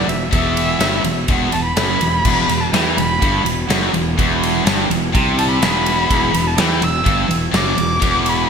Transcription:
0.07 0.31 E1 medium
0.07 0.27 E2 medium
0.07 0.32 E5 medium
0.07 ride medium
0.31 0.78 E1 medium
0.31 0.78 E2 loud
0.31 1.26 E5 loud
0.31 kick loud
0.31 ride loud
0.57 ride medium
0.79 1.03 G1 medium
0.79 1.03 G2 medium
0.79 snare loud
0.79 ride loud
1.04 1.27 E1 medium
1.04 1.24 E2 medium
1.04 ride medium
1.28 1.52 E1 loud
1.28 1.53 E2 loud
1.28 kick loud
1.28 ride loud
1.52 1.76 E1 medium
1.52 1.73 E2 medium
1.52 1.64 A5 loud
1.52 ride medium
1.65 2.62 B5 loud
1.76 2.00 F#1 medium
1.76 2.00 F#2 loud
1.76 snare loud
1.76 ride loud
2.01 2.23 E1 medium
2.01 2.21 E2 medium
2.01 ride medium
2.25 2.47 E1 medium
2.25 2.49 E2 loud
2.25 kick loud
2.25 crash medium
2.48 2.71 E1 medium
2.48 2.69 E2 medium
2.48 snare soft
2.48 ride medium
2.61 2.72 A5 medium
2.73 2.96 E2 medium
2.73 2.97 E3 medium
2.73 2.95 G5 medium
2.73 snare loud
2.73 ride loud
2.96 3.20 E1 medium
2.96 3.17 E2 medium
2.96 3.43 B5 loud
2.96 ride medium
3.22 3.44 G1 loud
3.22 3.44 G2 loud
3.22 kick loud
3.22 ride medium
3.45 3.68 E1 medium
3.45 3.65 E2 medium
3.45 ride medium
3.69 3.92 F#1 medium
3.69 3.93 F#2 loud
3.69 snare loud
3.69 ride loud
3.93 4.16 E1 medium
3.93 4.13 E2 medium
3.93 ride medium
4.18 4.63 E1 medium
4.18 4.64 E2 loud
4.18 kick loud
4.18 ride medium
4.43 snare soft
4.43 ride medium
4.65 4.88 G1 medium
4.65 4.89 G2 medium
4.65 snare loud
4.65 ride loud
4.90 5.13 E1 medium
4.90 5.09 E2 medium
4.90 ride medium
5.13 5.59 C2 loud
5.13 5.61 C3 loud
5.13 kick loud
5.13 ride loud
5.38 5.49 A5 loud
5.38 ride medium
5.51 6.49 B5 loud
5.61 6.07 E1 medium
5.61 6.09 E2 loud
5.61 snare loud
5.61 ride loud
5.86 ride medium
6.10 6.32 E1 medium
6.10 6.33 E2 loud
6.10 kick loud
6.10 ride loud
6.34 6.57 E1 medium
6.34 6.54 E2 medium
6.34 snare soft
6.34 ride medium
6.47 6.61 A5 medium
6.58 6.80 E2 loud
6.58 6.82 E3 loud
6.58 6.85 G5 loud
6.58 snare loud
6.58 ride loud
6.81 7.04 E1 medium
6.81 7.01 E2 medium
6.81 7.29 E6 loud
6.81 ride medium
7.04 7.28 G1 loud
7.04 7.27 G2 loud
7.04 kick loud
7.04 ride medium
7.28 7.52 E1 medium
7.28 7.48 E2 medium
7.28 ride medium
7.51 7.76 F#1 medium
7.51 7.75 F#2 loud
7.51 snare loud
7.51 ride loud
7.56 8.30 D6 loud
7.75 8.00 E1 medium
7.75 7.96 E2 medium
7.75 ride medium
8.00 8.47 E1 medium
8.00 8.48 E2 loud
8.00 kick loud
8.00 ride loud
8.26 8.49 B5 loud
8.26 ride medium

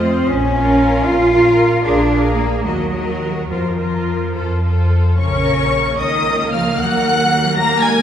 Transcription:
0.00 0.19 F2 medium
0.00 0.27 C4 medium
0.00 0.27 F4 medium
0.00 0.27 C5 medium
0.00 0.27 D#5 medium
0.27 0.96 A#1 medium
0.27 1.05 C#4 loud
0.53 1.30 F4 medium
0.53 1.30 A#4 medium
0.53 1.30 F5 medium
1.05 1.75 A#1 medium
1.05 1.84 F4 loud
1.31 1.83 F4 medium
1.31 1.83 A#4 medium
1.31 1.83 F5 medium
1.84 2.55 A#1 medium
1.84 2.36 D4 loud
1.84 2.10 G#4 medium
1.84 2.09 A#4 medium
1.84 2.09 F5 medium
2.11 2.64 G#4 medium
2.11 2.62 A#4 medium
2.11 2.63 F5 medium
2.37 2.64 A#3 medium
2.63 3.39 D#2 medium
2.63 3.49 F#3 medium
2.63 2.92 F#4 medium
2.63 2.90 A#4 soft
2.63 2.90 D#5 medium
2.92 3.49 F#4 medium
2.92 3.48 A#4 medium
2.92 3.48 D#5 soft
3.49 4.25 F2 medium
3.49 4.91 F3 medium
3.49 3.78 F4 soft
3.49 3.77 A#4 soft
3.49 3.77 C5 medium
3.78 4.34 F4 medium
3.78 4.34 A#4 soft
3.78 4.33 C5 soft
4.34 5.09 F2 medium
4.34 4.62 F4 soft
4.34 4.62 A4 soft
4.34 4.61 C5 soft
4.62 5.18 F4 soft
4.62 5.18 A4 soft
4.62 5.17 C5 soft
5.18 5.96 A#1 medium
5.18 5.96 C#3 medium
5.18 5.95 C#4 medium
5.18 5.95 A#4 medium
5.18 5.96 C#5 medium
5.18 5.95 C#6 medium
5.99 6.77 C#2 medium
5.99 6.51 D#3 medium
5.99 7.55 A#3 medium
5.99 6.77 A#4 medium
5.99 6.52 D#5 medium
5.99 6.51 D#6 medium
6.52 6.60 F3 medium
6.52 6.79 F5 medium
6.52 6.78 F6 medium
6.78 8.02 D#2 medium
6.78 7.55 F#3 medium
6.78 7.55 A#4 medium
6.78 7.57 F#5 medium
6.78 7.57 F#6 loud
7.56 8.02 A#3 medium
7.56 7.83 A#3 medium
7.56 8.02 A#4 medium
7.56 7.82 A#5 medium
7.56 7.82 A#6 loud
7.81 7.91 G#3 medium
7.81 8.02 G#5 loud
7.81 8.02 G#6 loud

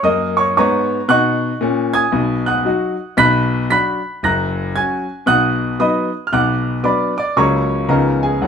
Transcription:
0.03 0.45 F#2 medium
0.03 0.46 A#3 medium
0.03 0.35 D#5 medium
0.03 0.37 D#6 medium
0.37 0.55 C#5 medium
0.37 0.55 C#6 medium
0.57 0.98 G#2 medium
0.57 0.99 B3 medium
0.57 1.05 C#5 medium
0.57 1.06 A#5 medium
0.57 1.09 C#6 medium
1.08 1.50 B2 medium
1.08 1.51 D#4 medium
1.08 1.58 F#5 medium
1.08 1.58 C#6 medium
1.08 1.61 F#6 medium
1.61 2.02 A#2 medium
1.61 2.03 C#4 medium
1.94 2.43 G#5 medium
1.94 2.43 D#6 medium
1.94 2.46 G#6 medium
2.12 2.57 B1 medium
2.12 2.57 B2 medium
2.46 3.14 F#5 medium
2.46 3.14 D#6 soft
2.46 3.17 F#6 medium
2.65 2.94 F#3 soft
2.65 2.94 D#4 soft
2.65 2.94 F#4 medium
3.17 3.61 B1 medium
3.17 3.62 B2 medium
3.17 3.67 B5 medium
3.17 3.67 F#6 medium
3.17 3.69 B6 loud
3.70 3.99 F#3 soft
3.70 3.99 D4 soft
3.70 4.00 F#4 soft
3.70 4.19 B5 medium
3.70 4.19 F#6 medium
3.70 4.22 B6 medium
4.23 4.67 F#1 medium
4.23 4.67 F#2 medium
4.23 4.72 A#5 medium
4.23 4.72 F#6 medium
4.23 4.75 A#6 medium
4.76 5.04 F#3 soft
4.76 5.04 C#4 soft
4.76 5.05 F#4 soft
4.76 5.24 G#5 medium
4.76 5.27 G#6 medium
5.26 5.71 B1 medium
5.26 5.71 B2 medium
5.26 5.76 F#5 medium
5.26 5.76 D#6 medium
5.26 5.79 F#6 medium
5.79 6.08 F#3 soft
5.79 6.08 B3 soft
5.79 6.09 D#4 medium
5.79 6.11 D#5 soft
5.79 6.11 B5 soft
5.79 6.13 D#6 medium
6.27 6.31 F6 medium
6.32 6.76 B1 medium
6.32 6.76 B2 medium
6.32 6.81 F#5 medium
6.32 6.81 D6 medium
6.32 6.84 F#6 medium
6.84 7.12 F#3 soft
6.84 7.12 B3 soft
6.84 7.13 D4 soft
6.84 7.15 D5 medium
6.84 7.16 B5 medium
6.84 7.16 D6 medium
7.18 7.36 D5 medium
7.18 7.36 D6 medium
7.36 7.81 C#2 medium
7.36 7.81 C#3 medium
7.36 7.65 F#3 soft
7.36 7.65 A#3 soft
7.36 7.66 C#4 soft
7.36 7.86 C#5 medium
7.36 7.85 A#5 medium
7.36 7.89 C#6 medium
7.89 8.33 C#2 medium
7.89 8.33 C#3 medium
7.89 8.17 F3 soft
7.89 8.17 B3 soft
7.89 8.18 D#4 soft
7.89 8.20 A#4 soft
7.89 8.20 F5 soft
7.89 8.22 A#5 medium
8.23 8.40 G#4 soft
8.23 8.41 G#5 medium
8.41 8.47 F#1 medium
8.41 8.47 F#2 medium
8.41 8.47 F#4 soft
8.41 8.47 C#5 soft
8.41 8.47 F#5 soft

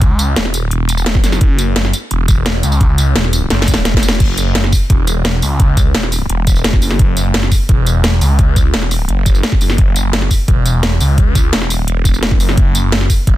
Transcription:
0.00 0.35 C#2 loud
0.00 kick loud
0.00 closed hi-hat medium
0.19 closed hi-hat medium
0.19 tambourine medium
0.36 0.70 E1 loud
0.36 snare loud
0.36 closed hi-hat medium
0.45 snare soft
0.54 closed hi-hat medium
0.54 tambourine medium
0.71 1.22 E1 loud
0.71 closed hi-hat medium
0.89 closed hi-hat loud
0.89 tambourine medium
0.97 tambourine soft
1.06 snare loud
1.06 closed hi-hat medium
1.15 kick loud
1.15 snare soft
1.24 1.40 F#1 loud
1.24 snare soft
1.24 closed hi-hat medium
1.24 tambourine medium
1.32 snare soft
1.32 tambourine soft
1.41 1.92 F#1 loud
1.41 kick loud
1.41 closed hi-hat medium
1.59 closed hi-hat loud
1.59 tambourine medium
1.76 snare loud
1.76 closed hi-hat medium
1.85 snare soft
1.93 closed hi-hat loud
1.93 tambourine medium
2.11 2.62 E1 loud
2.11 closed hi-hat medium
2.28 kick loud
2.28 closed hi-hat loud
2.28 tambourine medium
2.46 snare loud
2.46 closed hi-hat medium
2.63 3.14 C#2 loud
2.63 closed hi-hat medium
2.63 tambourine medium
2.72 tambourine soft
2.81 kick loud
2.81 closed hi-hat medium
2.98 closed hi-hat loud
2.98 tambourine medium
3.15 3.49 E1 loud
3.15 snare loud
3.15 closed hi-hat medium
3.24 snare soft
3.33 closed hi-hat loud
3.33 tambourine medium
3.50 3.84 F#1 loud
3.50 snare medium
3.50 closed hi-hat medium
3.62 snare medium
3.68 kick medium
3.68 closed hi-hat loud
3.68 tambourine medium
3.74 snare medium
3.74 tambourine soft
3.85 4.19 E1 loud
3.85 snare medium
3.85 closed hi-hat medium
3.94 kick loud
3.94 snare loud
4.03 closed hi-hat loud
4.03 tambourine medium
4.09 snare loud
4.09 tambourine soft
4.20 4.71 F#1 loud
4.20 kick loud
4.20 closed hi-hat medium
4.20 crash loud
4.38 closed hi-hat loud
4.38 tambourine medium
4.55 snare loud
4.55 closed hi-hat medium
4.64 snare soft
4.72 kick medium
4.72 open hi-hat medium
4.72 tambourine medium
4.90 5.41 E1 loud
4.90 kick loud
4.90 closed hi-hat medium
5.07 closed hi-hat loud
5.07 tambourine medium
5.25 snare loud
5.25 closed hi-hat medium
5.42 5.93 C#2 loud
5.42 open hi-hat medium
5.42 tambourine medium
5.60 kick loud
5.60 closed hi-hat medium
5.77 kick loud
5.77 closed hi-hat medium
5.77 tambourine medium
5.95 6.28 E1 loud
5.95 snare loud
5.95 closed hi-hat medium
6.03 snare soft
6.12 open hi-hat medium
6.12 tambourine medium
6.29 6.80 E1 loud
6.29 closed hi-hat medium
6.47 kick medium
6.47 closed hi-hat medium
6.47 tambourine medium
6.56 tambourine soft
6.64 snare loud
6.64 closed hi-hat medium
6.73 kick loud
6.73 snare soft
6.82 6.98 F#1 loud
6.82 open hi-hat medium
6.82 tambourine medium
6.91 snare soft
6.99 7.50 F#1 loud
6.99 kick loud
6.99 closed hi-hat medium
7.17 closed hi-hat medium
7.17 tambourine medium
7.34 snare loud
7.34 closed hi-hat medium
7.43 snare soft
7.52 kick medium
7.52 open hi-hat medium
7.52 tambourine medium
7.69 8.20 E1 loud
7.69 kick loud
7.69 closed hi-hat medium
7.87 closed hi-hat medium
7.87 tambourine medium
8.04 snare loud
8.04 closed hi-hat medium
8.21 8.72 C#2 loud
8.21 open hi-hat medium
8.21 tambourine medium
8.39 kick loud
8.39 closed hi-hat medium
8.56 kick loud
8.56 closed hi-hat medium
8.56 tambourine medium
8.74 9.07 E1 loud
8.74 snare loud
8.74 closed hi-hat medium
8.82 snare soft
8.91 open hi-hat medium
8.91 tambourine medium
9.09 9.42 F#1 loud
9.09 closed hi-hat medium
9.26 kick medium
9.26 closed hi-hat medium
9.26 tambourine medium
9.35 tambourine soft
9.43 snare loud
9.43 closed hi-hat medium
9.52 kick loud
9.52 snare soft
9.61 9.77 F#1 loud
9.61 open hi-hat medium
9.61 tambourine medium
9.70 snare soft
9.78 10.29 F#1 loud
9.78 kick loud
9.78 closed hi-hat medium
9.96 closed hi-hat medium
9.96 tambourine medium
10.13 snare loud
10.13 closed hi-hat medium
10.22 snare soft
10.31 kick medium
10.31 open hi-hat medium
10.31 tambourine medium
10.48 10.99 E1 loud
10.48 kick loud
10.48 closed hi-hat medium
10.66 closed hi-hat medium
10.66 tambourine medium
10.83 snare loud
10.83 closed hi-hat medium
11.00 11.51 C#2 loud
11.00 open hi-hat medium
11.00 tambourine medium
11.18 kick loud
11.18 closed hi-hat medium
11.35 kick loud
11.35 closed hi-hat medium
11.35 tambourine medium
11.53 11.86 E1 loud
11.53 snare loud
11.53 closed hi-hat medium
11.62 snare soft
11.70 open hi-hat medium
11.70 tambourine medium
11.88 12.39 E1 loud
11.88 closed hi-hat medium
12.05 kick medium
12.05 closed hi-hat loud
12.05 tambourine medium
12.14 tambourine soft
12.23 snare loud
12.23 closed hi-hat medium
12.31 kick loud
12.31 snare soft
12.40 12.56 F#1 loud
12.40 open hi-hat medium
12.40 tambourine medium
12.49 snare soft
12.57 13.08 F#1 loud
12.57 kick loud
12.57 closed hi-hat medium
12.75 closed hi-hat loud
12.75 tambourine medium
12.92 snare loud
12.92 closed hi-hat medium
13.01 snare soft
13.10 kick medium
13.10 open hi-hat medium
13.10 tambourine medium
13.27 13.37 E1 loud
13.27 kick loud
13.27 closed hi-hat medium

